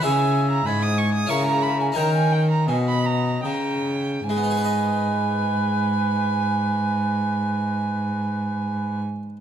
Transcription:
<<
  \new Staff \with { instrumentName = "Violin" } { \time 3/4 \key gis \minor \tempo 4 = 70 gis''8. ais''16 b''16 dis'''16 cis'''16 dis'''16 cis'''16 ais''16 b''16 gis''16 | ais''16 gis''16 g''16 ais''16 gis''16 b''16 ais''8 g''4 | gis''2.~ | gis''2. | }
  \new Staff \with { instrumentName = "Oboe" } { \time 3/4 \key gis \minor e''4 gis''4 ais''4 | g''8 r8 dis''4 ais''8 r8 | b'2.~ | b'2. | }
  \new Staff \with { instrumentName = "Harpsichord" } { \time 3/4 \key gis \minor <cis' e' gis'>2 <cis' e' ais'>4 | <cis' dis' ais'>2. | <gis b dis' gis' b' dis''>2.~ | <gis b dis' gis' b' dis''>2. | }
  \new Staff \with { instrumentName = "Harpsichord" } { \clef bass \time 3/4 \key gis \minor cis4 gis,4 cis4 | dis4 b,4 cis4 | r2. | r2. | }
  \new Staff \with { instrumentName = "Cello" } { \clef bass \time 3/4 \key gis \minor cis4 gis,4 cis4 | dis4 b,4 cis4 | gis,2.~ | gis,2. | }
>>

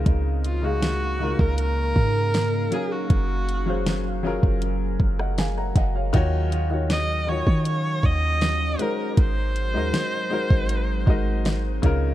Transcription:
<<
  \new Staff \with { instrumentName = "Viola" } { \time 4/4 \key aes \mixolydian \tempo 4 = 79 r8 f'16 ges'4 bes'16 bes'4. aes'16 ges'16~ | ges'4~ ges'16 r2 r8. | r4 ees''8 des''8 des''8 ees''4 bes'8 | c''2.~ c''8 r8 | }
  \new Staff \with { instrumentName = "Grand piano" } { \time 4/4 \key aes \mixolydian << { r1 | r2 r8. <ees'' ges''>16 <f'' aes''>16 <ges'' bes''>16 <ees'' ges''>16 <des'' f''>16~ | <des'' f''>16 r2. r8. | r2. ees''4 | } \\ { <des aes ees' f' bes'>8 r16 <des aes ees' aes' f''>8 r16 <des aes ees' f' bes'>4. r8 <ges des' aes' bes' f''>8~ | <ges des' aes' bes' f''>8 r16 <ges des' aes' c'' f''>8 r16 <ges des' f' aes' bes'>8. r4. r16 | <ees ees' f' ges' des''>8 r16 <ees ees' f' ges' des''>8 r16 <ees ees' f' ges' des''>4. r8 <aes ees' ges' bes' c''>8~ | <aes ees' ges' bes' c''>8 r16 <aes ees' ges' bes' ees''>8 r16 <aes ees' ges' bes' c''>8. r16 <aes ees' ges' bes' ees''>8. r16 <des des' ees' f' bes'>8 | } >> }
  \new Staff \with { instrumentName = "Ambient pad" } { \time 4/4 \key aes \mixolydian << { f''2.~ f''8 bes'8~ | bes'1 | ges1~ | ges2.~ ges8 r8 | } \\ { <des bes ees'>2.~ <des bes ees'>8 <ges aes'>8~ | <ges aes'>1 | <ees des'>2.~ <ees des'>8 <aes c'>8~ | <aes c'>2.~ <aes c'>8 r8 | } >> }
  \new Staff \with { instrumentName = "808-style bass" } { \clef bass \time 4/4 \key aes \mixolydian des,4.~ des,16 des,8. aes,4 r8 | ges,,4.~ ges,,16 ges,,8. ges,,4 ges,,8 | ees,4.~ ees,16 ees8. ees,4 r8 | aes,,8. ees,16 r8. aes,,8. aes,,4 des,8 | }
  \new DrumStaff \with { instrumentName = "Drums" } \drummode { \time 4/4 <hh bd>8 hh8 <hh sn>8. bd16 hh8 bd8 <hh sn>8 hh8 | <hh bd>8 hh8 <hh sn>8. bd16 hh8 bd16 ss16 <hh sn>8 <hh bd>8 | <hh bd>8 hh8 <hh sn>8. bd16 hh8 bd8 <hh sn>8 hh8 | <hh bd>8 hh8 <hh sn>8. bd16 hh8 bd8 <hh sn>8 <hh bd>8 | }
>>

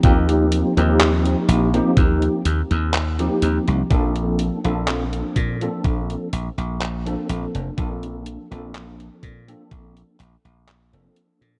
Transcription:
<<
  \new Staff \with { instrumentName = "Tine electric piano" } { \time 4/4 \key bes \major \tempo 4 = 62 <f bes c' ees' g'>8. <f bes c' ees' g'>4 <f bes c' ees' g'>8. r8. <f bes c' ees' g'>8. | <f bes c' d' a'>8. <f bes c' d' a'>4 <f bes c' d' a'>8. r8. <f bes c' d' a'>8. | <f bes c' d' a'>8. <f bes c' d' a'>4 <f bes c' d' a'>8. r8. <f bes c' d' a'>8. | }
  \new Staff \with { instrumentName = "Slap bass" } { \clef bass \time 4/4 \key bes \major ees,8 r16 ees,8 r16 bes,,16 r16 ees,16 r16 ees,16 ees,8 r16 ees,16 c,16 | bes,,8 r16 bes,,8 r16 bes,16 r16 bes,,16 r16 bes,,16 bes,,8 r16 bes,,16 f,,16 | bes,,8 r16 bes,,8 r16 bes,16 r16 bes,,16 r16 bes,,16 bes,,8 f,,16 r16 bes,16 | }
  \new DrumStaff \with { instrumentName = "Drums" } \drummode { \time 4/4 <hh bd>16 hh16 hh16 hh16 <hc hh>16 hh16 hh16 hh16 <hh bd>16 hh16 hh16 hh16 <hc hh>16 hh16 hh16 hh16 | <hh bd>16 hh16 hh16 hh16 <hc hh>16 hh16 <hh bd>16 hh16 <hh bd>16 hh16 hh16 hh16 <hc hh>16 hh16 hh16 hh16 | <hh bd>16 hh16 hh16 hh16 <hc hh>16 hh16 <hh bd>16 hh16 <hh bd>16 hh16 <hc hh>16 hh16 <hc hh>16 hh16 hh16 hh16 | }
>>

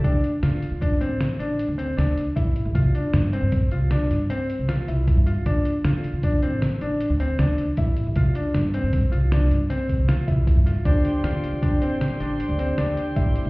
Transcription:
<<
  \new Staff \with { instrumentName = "Tonewheel organ" } { \time 7/4 \key d \minor \tempo 4 = 156 r1. r4 | r1. r4 | r1. r4 | r1. r4 |
<d' g' c''>1.~ <d' g' c''>4 | }
  \new Staff \with { instrumentName = "Grand piano" } { \time 7/4 \key d \minor d'4 f'4 d'8 c'4 d'4 c'8 d'4 e'4 | f'8 d'4 c'4 f'8 d'4 c'4 f'8 e'4 f'8 | d'4 f'4 d'8 c'4 d'4 c'8 d'4 e'4 | f'8 d'4 c'4 f'8 d'4 c'4 f'8 e'4 f'8 |
d'4 f'4 d'8 c'4 d'4 c'8 d'4 e'4 | }
  \new Staff \with { instrumentName = "Upright bass" } { \clef bass \time 7/4 \key d \minor d,8 r8 d8 r16 d8 r16 a,,8 r8 a,,8 r16 d,8. d,8 r8 a,,8 r16 a,,16 | c,8 r8 g,8. g,8 r16 c,4 g,8 r8. c,8 r16 c,8. g,8 r16 | d,8 r8 d8 r16 d8 r16 a,,8 r8 a,,8 r16 d,8. d,8 r8 a,,8 r16 a,,16 | c,8 r8 g,8. g,8 r16 c,4 g,8 r8. c,8 r16 c,8. g,8 r16 |
d,8 r8 d8 r16 d8 r16 a,,8 r8 a,,8 r16 d,8. d,8 r8 a,,8 r16 b,,16 | }
  \new DrumStaff \with { instrumentName = "Drums" } \drummode { \time 7/4 <hh bd>8 hh8 <hh sn>8 hh8 <hh bd>8 hh8 <hh sn>8 hh8 hh8 hh8 <hh sn>8 hh8 <hh bd>8 hh8 | <hh bd>8 hh8 <hh sn>8 hh8 <hh bd>8 hh8 <hh sn>8 <hh sn>8 hh8 hh8 <hh sn>8 hh8 <hh bd>8 hh8 | <hh bd>8 hh8 <hh sn>8 hh8 <hh bd>8 hh8 <hh sn>8 hh8 hh8 hh8 <hh sn>8 hh8 <hh bd>8 hh8 | <hh bd>8 hh8 <hh sn>8 hh8 <hh bd>8 hh8 <hh sn>8 hh8 <hh sn>8 <hh bd>8 <hh sn>8 <hh bd>8 <hh bd>8 <hh sn>8 |
<hh bd>8 <hh sn>8 <hh sn>8 hh8 <hh bd sn>8 hh8 <hh sn>8 <hh sn>8 hh8 hh8 <hh sn>8 hh8 <hh bd>8 hh8 | }
>>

